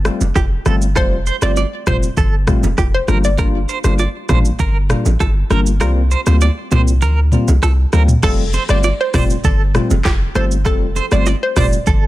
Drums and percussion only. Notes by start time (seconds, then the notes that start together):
0.05 cross-stick, shaker
0.21 low bongo, shaker
0.35 kick, cross-stick, high bongo, shaker
0.66 cross-stick, low conga, shaker
0.82 shaker
0.96 kick, cross-stick, low conga, shaker
1.26 shaker
1.42 cross-stick, low bongo, shaker
1.57 high bongo, shaker
1.87 kick, cross-stick, mid tom, high bongo, low bongo, shaker
2.03 shaker
2.17 kick, low conga, shaker
2.47 kick, cross-stick, mid tom, shaker
2.63 low bongo, shaker
2.78 kick, cross-stick, high bongo, shaker
3.08 cross-stick, low conga, shaker
3.24 shaker
3.38 kick, cross-stick, low conga, shaker
3.69 shaker
3.84 cross-stick, low bongo, shaker
3.99 high bongo, shaker
4.29 kick, cross-stick, mid tom, high bongo, low bongo, shaker
4.45 shaker
4.59 kick, low conga, shaker
4.89 cross-stick, mid tom, shaker
5.06 low bongo, shaker
5.20 kick, cross-stick, high bongo, shaker
5.50 cross-stick, low conga, shaker
5.66 shaker
5.80 cross-stick, low conga, shaker
6.11 shaker
6.26 cross-stick, low bongo, shaker
6.41 high bongo, shaker
6.71 mid tom, high bongo, low bongo, shaker
6.88 shaker
7.02 low conga, shaker
7.32 mid tom, shaker
7.48 low bongo, shaker
7.63 cross-stick, high bongo, shaker
7.93 cross-stick, low conga, shaker
8.08 mid tom, shaker
8.23 kick, cross-stick, crash, low conga, shaker
8.53 low bongo, shaker
8.69 cross-stick, shaker
8.83 high bongo, shaker
9.14 kick, cross-stick, mid tom, open hi-hat, high bongo, low bongo, shaker
9.30 shaker
9.44 kick, low conga, shaker
9.74 cross-stick, mid tom, shaker
9.91 low bongo, shaker
10.05 kick, cross-stick, clap, high bongo, shaker
10.35 cross-stick, high bongo, low conga, shaker
10.51 shaker
10.65 kick, cross-stick, low conga, shaker
10.96 low bongo, shaker
11.11 cross-stick, shaker
11.26 high bongo, shaker
11.56 kick, cross-stick, mid tom, open hi-hat, high bongo, low bongo, shaker
11.73 shaker
11.87 kick, low conga, shaker